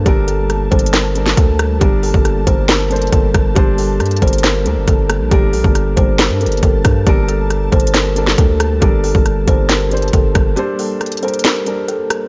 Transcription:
<<
  \new Staff \with { instrumentName = "Kalimba" } { \time 4/4 \key g \minor \tempo 4 = 137 g'8 a'4 c''8 bes'4 a'8 r8 | g'8 a'4 c''8 bes'4 a'8 r8 | g'8 a'4 c''8 bes'4 a'8 r8 | g'8 a'4 c''8 bes'4 a'8 r8 |
g'8 a'4 c''8 bes'4 a'8 r8 | g'8 a'4 c''8 bes'4 a'8 r8 | g'8 a'4 c''8 bes'4 a'8 r8 | }
  \new Staff \with { instrumentName = "Grand piano" } { \time 4/4 \key g \minor <g d' a' bes'>4 r8 <g d' a' bes'>8. r16 <g d' a' bes'>4 r8 | <g d' a' bes'>8 r16 <g d' a' bes'>8 r16 <g d' a' bes'>8. r16 <g d' a' c''>4 r8 | <g d' a' c''>4 r8 <g d' a' bes'>8. r16 <g d' a' bes'>4 r8 | <g d' a' bes'>8 r16 <g d' a' bes'>8 r16 <g d' a' bes'>8. r16 <g d' a' bes'>4 r8 |
<g d' a' bes'>4 r8 <g d' a' bes'>8. r16 <g d' a' bes'>4 r8 | <g d' a' bes'>8 r16 <g d' a' bes'>8 r16 <g d' a' bes'>8. r16 <g d' a' c''>4 r8 | <g d' a' c''>4 r8 <g d' a' bes'>8. r16 <g d' a' bes'>4 r8 | }
  \new Staff \with { instrumentName = "Ambient pad" } { \time 4/4 \key g \minor << { a''1~ | a''1~ | a''1 | a''1~ |
a''1~ | a''1~ | a''1 | } \\ { <g bes>1~ | <g bes>1~ | <g bes>1~ | <g bes>1~ |
<g bes>1 | <g bes>1~ | <g bes>1 | } >> }
  \new Staff \with { instrumentName = "808-style bass" } { \clef bass \time 4/4 \key g \minor g,,4. g,,4. d,4 | g,,8. g,,8. g,,4. g,,8 g,,8 | g,,4 g,8 g,,4 d,16 g,,16 g,,8. bes,,16 | g,,8 bes,,16 g,,8. g,,8. g,16. g,,16. g,,8 g,8 |
g,,4. g,,4. d,4 | g,,8. g,,8. g,,4. g,,8 g,,8 | r1 | }
  \new DrumStaff \with { instrumentName = "Drums" } \drummode { \time 4/4 <hh bd>8 hh8 \tuplet 3/2 { <hh ss>16 r16 r16 <hh bd>16 hh16 hh16 } <hh sn>8 hh16 sn16 <hh bd>8 <hh ss>8 | <hh bd>8 hho16 bd16 <hh ss>8 <hh bd>8 <hh sn>8 hh32 hh32 hh32 hh32 <hh bd>8 <hh bd ss>8 | <hh bd>8 hho8 <hh ss>32 hh32 hh32 hh32 <hh bd>32 hh32 hh32 hh32 <hh sn>8 hh8 <hh bd>8 <hh ss>8 | <hh bd>8 hho16 bd16 <hh ss>8 <hh bd>8 <hh sn>8 hh32 hh32 hh32 hh32 <hh bd>8 <hh bd ss>8 |
<hh bd>8 hh8 \tuplet 3/2 { <hh ss>16 r16 r16 <hh bd>16 hh16 hh16 } <hh sn>8 hh16 sn16 <hh bd>8 <hh ss>8 | <hh bd>8 hho16 bd16 <hh ss>8 <hh bd>8 <hh sn>8 hh32 hh32 hh32 hh32 <hh bd>8 <hh bd ss>8 | hh8 hho8 <hh ss>32 hh32 hh32 hh32 hh32 hh32 hh32 hh32 <hh sn>8 hh8 hh8 <hh ss>8 | }
>>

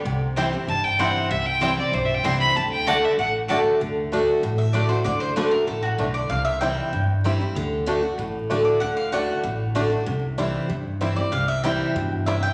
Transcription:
<<
  \new Staff \with { instrumentName = "Fiddle" } { \time 4/4 \key d \mixolydian \tempo 4 = 192 r2 a''8 g''8 fis''4 | e''8 g''4 d''8 \tuplet 3/2 { c''8 e''8 g''8 } c'''8 b''8 | a''8 g''8 fis''8 e''8 fis''8 r4. | r1 |
r1 | r1 | r1 | r1 |
r1 | r1 | }
  \new Staff \with { instrumentName = "Mandolin" } { \time 4/4 \key d \mixolydian r4 <c' e' c'' g''>8 r4. <c' e' c'' g''>8 r8 | r4 <c' e' c'' g''>8 r4. <c' e' c'' g''>8 r8 | r4 <a fis' d'' a''>8 r4. <a fis' d'' a''>8 r8 | r2 r8 e''8 d''8 c''8 |
d''8 c''8 b'8 bes'8 a'8 fis'8 r8 d''8 | f''8 e''8 g''4. r4. | r2. r8 d''8 | fis''8 f''8 fis''4. r4. |
r2. r8 d''8 | f''8 e''8 g''4. r8 e''8 g''8 | }
  \new Staff \with { instrumentName = "Five-string banjo" } { \time 4/4 \key d \mixolydian r4 <g c' e'>8 r4. <g c' e'>8 r8 | r4 <g c' e'>8 r4. <g c' e'>8 r8 | r4 <a d'>8 r4. <a d'>8 r8 | r4 <a d'>8 r4. <a d'>8 r8 |
r4 <a d'>8 r4. <a d'>8 r8 | r4 <g c' e'>8 r4. <g c' e'>8 r8 | r4 <a d'>8 r4. <a d'>8 r8 | r4 <a d'>8 r4. <a d'>8 r8 |
r4 <g c' e'>8 r4. <g c' e'>8 r8 | r4 <g c' e'>8 r4. <g c' e'>8 r8 | }
  \new Staff \with { instrumentName = "Steel-string acoustic guitar" } { \time 4/4 \key d \mixolydian << { r4 <e g c' e'>8 <c' e'>8 r4 <e g c' e'>4 | r4 <e g c' e'>8 <c' e'>8 r4 <e g c' e'>4 | r4 <d a d' fis'>4 r4 <d a d' fis'>4 | r4 <d a d' fis'>4 r4 <d a d' fis'>8 <d' fis'>8 |
r4 <d a d' fis'>8 <d' fis'>8 r2 | r4 <e g c' e'>4 r4 <e g c' e'>8 <c' e'>8 | r4 <d a d' fis'>8 <d' fis'>8 r4 <d a d' fis'>4 | r4 <d a d' fis'>4 r4 <d a d' fis'>8 <d' fis'>8 |
r4 <e g c' e'>4 r4 <e g c' e'>8 <c' e'>8 | r4 <e g c' e'>4 r2 | } \\ { c2 g,2 | c2 g,2 | d2 a,2 | d2 a,2 |
d2 a,4 d4 | c2 g,2 | d2 a,2 | d2 a,2 |
c2 g,2 | c2 b,4 c4 | } >> }
  \new Staff \with { instrumentName = "Upright bass" } { \clef bass \time 4/4 \key d \mixolydian c,2 g,,2 | c,2 b,,4 c,4 | d,2 a,,2 | d,2 a,,2 |
d,2 a,,4 b,,4 | c,2 g,,2 | d,2 a,,2 | d,2 a,,2 |
c,2 g,2 | c,2 g,2 | }
>>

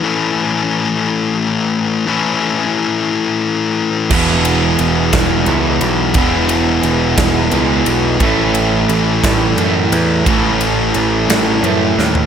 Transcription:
<<
  \new Staff \with { instrumentName = "Distorted electric guitar" } { \time 6/8 \key a \lydian \tempo 4. = 59 <a, e a cis' e'>2. | <a, e a cis' e'>2. | <e gis b e'>2. | <e gis b e'>2. |
<a, e a cis' e'>2. | <a, e a cis' e'>2. | }
  \new Staff \with { instrumentName = "Distorted electric guitar" } { \clef bass \time 6/8 \key a \lydian r2. | r2. | <e, b, e>4. <e, b, e>4. | <e, b, e>4. <e, b, e>4. |
<a, e a>4. <a, e a>4. | <a, e a>4. <a, e a>4. | }
  \new Staff \with { instrumentName = "Overdriven electric guitar" } { \clef bass \time 6/8 \key a \lydian r2. | r2. | <e, b, e>2 <e, b, e>4 | <e, b, e>2 <e, b, e>4 |
<a, e a>2 <a, e a>4 | <a, e a>2 <a, e a>4 | }
  \new Staff \with { instrumentName = "Picked electric bass" } { \clef bass \time 6/8 \key a \lydian r2. | r2. | e,,4 e,,8 e,,8 cis,8 b,,8 | e,,4 e,,8 e,,8 cis,8 b,,8 |
a,,4 a,,8 a,,8 fis,8 e,8 | a,,4 a,,8 a,,8 fis,8 dis,8 | }
  \new DrumStaff \with { instrumentName = "Drums" } \drummode { \time 6/8 r4. r4. | r4. r4. | <cymc bd>8 cymr8 cymr8 <bd cymr sn>8 cymr8 cymr8 | <bd cymr>8 cymr8 cymr8 <bd cymr sn>8 cymr8 cymr8 |
<bd cymr>8 cymr8 cymr8 <bd cymr sn>8 cymr8 cymr8 | <bd cymr>8 cymr8 cymr8 <cymr sn>8 cymr8 sn16 tomfh16 | }
>>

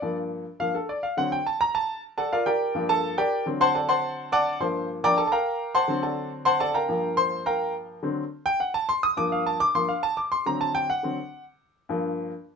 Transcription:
<<
  \new Staff \with { instrumentName = "Grand piano" } { \time 4/4 \key g \minor \tempo 4 = 210 d''8 r4. f''8 a'8 d''8 f''8 | fis''8 g''8 a''8 bes''8 a''4 r8 <a' d'' fis'' a''>8 | <f' bes' d'' f''>8 <g' bes' d'' g''>4. <a' a''>4 <g' bes' d'' g''>4 | r8 <c'' fis'' a'' c'''>8 <a' d'' fis'' a''>8 <c'' fis'' a'' c'''>4. <d'' fis'' a'' d'''>4 |
<c'' c'''>4 r8 <d'' g'' bes'' d'''>8 <a' a''>8 <bes' f'' g'' a'' bes''>4. | <c'' fis'' a'' c'''>4 <a' d'' fis'' a''>4 r8 <c'' fis'' a'' c'''>8 <a' d'' fis'' a''>8 <bes' f'' g'' bes''>8~ | <bes' f'' g'' bes''>4 <c'' c'''>4 <bes' f'' g'' bes''>4 r4 | r4. g''8 fis''8 a''8 c'''8 ees'''8 |
d'''8 f''8 a''8 d'''8 c'''8 f''8 a''8 d'''8 | c'''8 bes''8 a''8 g''8 fis''2 | r1 | }
  \new Staff \with { instrumentName = "Grand piano" } { \clef bass \time 4/4 \key g \minor <g, f bes>4. r8 <g, f bes>8 r4. | <d fis c'>8 r2. r8 | r4. <g, f bes>4. r4 | <d fis c'>1 |
<g, f bes>4. <g, f bes>8 r2 | r8 <d fis c'>2.~ <d fis c'>8 | <g, f bes>1 | <d fis c'>8 r2. r8 |
<g, f bes>4. r8 <g, f bes>8 r4. | r8 <d fis c'>4. r8 <d fis c'>8 r4 | r4. <g, f bes>4. r4 | }
>>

